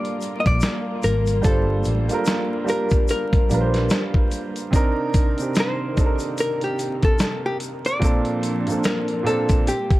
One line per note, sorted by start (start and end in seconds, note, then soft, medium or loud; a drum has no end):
0.00 1.42 G3 loud
0.00 4.70 G3 medium
0.00 4.70 A#3 medium
0.00 1.43 D4 medium
0.00 1.44 F4 loud
0.00 4.70 F4 medium
0.00 1.46 A4 medium
0.00 2.14 A#4 loud
0.00 0.34 D5 loud
0.05 closed hi-hat soft
0.21 closed hi-hat medium
0.21 shaker soft
0.40 0.47 D#5 medium
0.46 0.61 A#1 medium
0.46 1.00 D5 loud
0.46 kick medium
0.46 closed hi-hat soft
0.61 snare loud
0.61 closed hi-hat medium
0.61 shaker medium
1.03 1.41 G#1 medium
1.03 1.44 A#4 medium
1.03 closed hi-hat medium
1.03 shaker soft
1.27 closed hi-hat soft
1.27 shaker soft
1.42 1.82 G1 medium
1.42 1.91 G3 medium
1.42 1.91 D4 medium
1.42 1.92 F4 medium
1.42 2.23 A4 medium
1.42 1.93 A4 medium
1.42 kick loud
1.42 closed hi-hat medium
1.42 shaker medium
1.47 1.93 C5 loud
1.84 2.07 A1 medium
1.84 closed hi-hat medium
1.84 shaker soft
2.08 2.55 G3 medium
2.08 2.56 D4 medium
2.08 2.56 F4 medium
2.08 closed hi-hat soft
2.08 shaker soft
2.12 2.57 A4 medium
2.12 2.58 A#4 loud
2.25 snare loud
2.25 closed hi-hat medium
2.25 shaker medium
2.64 3.32 G3 medium
2.64 3.33 D4 medium
2.64 3.33 F4 medium
2.64 shaker soft
2.69 3.34 G4 medium
2.69 3.09 A#4 loud
2.69 3.35 A#4 medium
2.69 closed hi-hat medium
2.90 kick loud
2.90 closed hi-hat soft
2.90 shaker soft
3.08 4.29 A#4 loud
3.08 closed hi-hat medium
3.08 shaker medium
3.33 kick medium
3.33 closed hi-hat soft
3.49 3.88 A#1 medium
3.49 4.45 G3 medium
3.49 4.46 D4 medium
3.49 4.46 F4 medium
3.49 closed hi-hat medium
3.49 shaker soft
3.53 4.47 A#4 medium
3.53 3.60 B4 medium
3.61 4.51 C5 medium
3.74 snare soft
3.74 closed hi-hat soft
3.89 snare loud
3.89 closed hi-hat medium
3.89 shaker medium
4.14 kick medium
4.31 closed hi-hat medium
4.31 shaker soft
4.56 closed hi-hat soft
4.56 shaker soft
4.70 5.20 C3 loud
4.70 7.99 C3 medium
4.70 7.99 D#3 medium
4.70 7.99 A#3 medium
4.70 5.20 C4 medium
4.70 5.21 D4 loud
4.70 kick loud
4.70 closed hi-hat medium
4.75 5.22 D#4 loud
4.75 5.22 A#4 loud
4.75 shaker medium
5.14 kick loud
5.14 closed hi-hat medium
5.14 shaker soft
5.37 5.83 C3 medium
5.37 5.84 C4 medium
5.37 5.85 D4 medium
5.37 closed hi-hat soft
5.37 shaker medium
5.41 5.86 D#4 medium
5.41 5.86 G4 medium
5.55 snare loud
5.55 closed hi-hat medium
5.55 shaker medium
5.60 6.42 C5 medium
5.94 7.20 C3 medium
5.94 7.21 C4 medium
5.94 7.22 D4 medium
5.94 kick medium
5.94 closed hi-hat medium
5.94 shaker soft
5.98 7.22 D#4 medium
5.98 6.05 A4 medium
6.06 7.26 A#4 medium
6.19 closed hi-hat soft
6.19 shaker soft
6.38 6.64 A#4 loud
6.38 closed hi-hat medium
6.38 shaker medium
6.61 7.04 G4 medium
6.61 closed hi-hat soft
6.79 closed hi-hat medium
6.79 shaker soft
7.02 7.45 A4 medium
7.02 kick medium
7.02 closed hi-hat soft
7.19 snare loud
7.19 closed hi-hat medium
7.19 shaker medium
7.46 7.57 G4 medium
7.60 closed hi-hat medium
7.60 shaker soft
7.85 8.88 D5 loud
7.85 closed hi-hat soft
7.85 shaker soft
7.99 8.48 A#2 loud
7.99 9.65 F3 medium
7.99 8.49 A#3 medium
7.99 9.65 A#3 medium
7.99 8.50 C4 medium
7.99 9.65 D4 medium
7.99 kick loud
7.99 closed hi-hat medium
8.03 8.50 D4 medium
8.03 8.51 A4 loud
8.03 shaker medium
8.25 closed hi-hat soft
8.43 closed hi-hat medium
8.43 shaker soft
8.67 9.13 A#2 medium
8.67 9.13 A#3 medium
8.67 9.14 C4 medium
8.67 9.15 D4 medium
8.67 closed hi-hat soft
8.67 shaker medium
8.72 9.15 A4 medium
8.84 9.26 A#4 medium
8.84 snare loud
8.84 closed hi-hat medium
8.84 shaker medium
9.08 closed hi-hat soft
9.23 9.65 A#2 medium
9.23 9.66 A#3 medium
9.23 9.67 C4 medium
9.23 9.67 D4 medium
9.23 9.68 A4 medium
9.23 closed hi-hat medium
9.27 9.68 A4 loud
9.27 shaker soft
9.49 kick medium
9.49 closed hi-hat soft
9.49 shaker soft
9.67 10.00 G3 medium
9.67 10.00 A#3 medium
9.67 10.00 F4 medium
9.67 10.00 G4 medium
9.67 closed hi-hat medium
9.67 shaker medium
9.91 kick medium
9.91 closed hi-hat soft